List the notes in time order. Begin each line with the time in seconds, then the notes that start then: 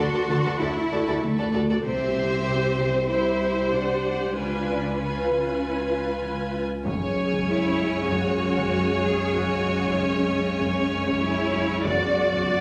Already playing: D2 D3 F#4 A5 B5 C6
0.13 D2 F#4 A4 D5
0.29 D2 D3 F#4 A4 D5
0.45 D2 F#4 A4 D5
0.60 D2 D4 E4 F#4 A4 D5
0.66 C#6
0.91 D2 D4 F#4 A4 D5
1.07 D2 F#4 A4 D5
1.23 D3 A3
1.38 D2 F#4 A4 D5
1.53 D2 D4 F#4 A4 D5
1.69 D2 F#4 A4 D5
1.85 C2 C3 C4 G4 C5 E5
2.17 C3
2.48 C3
2.79 C3
3.10 C4 E4 G4 C5 E5
3.41 C4
3.72 C3 D4 F#5
4.04 C4
4.35 C#2 C#3 D4 F4 B4 G#5
4.67 C#3
4.98 C#3 C#4 F4 B4 G#5
5.29 C#3
5.61 C#4
5.92 C#4
6.23 C#3
6.55 C#4
6.85 B1 F#2 C#3 G#3 C#4 C#5 G#5, taiko
7.17 F#2
7.33 taiko
7.48 F#2 E4
7.80 F#2
8.11 F#2 F#4, taiko
8.42 F#2
8.58 taiko
8.73 F#3
9.04 F#3 G#4, taiko
9.35 F#2 F#4, taiko
9.67 F#2
9.83 taiko
9.98 F#2 C#4
10.29 F#2
10.61 F#2, taiko
10.92 F#2
11.07 taiko
11.23 F#3 E4
11.54 F#3, taiko
11.85 B1 F#2 B3 F#4 D5 D6, taiko
12.17 F#2
12.33 taiko
12.48 F#2 B3 F#6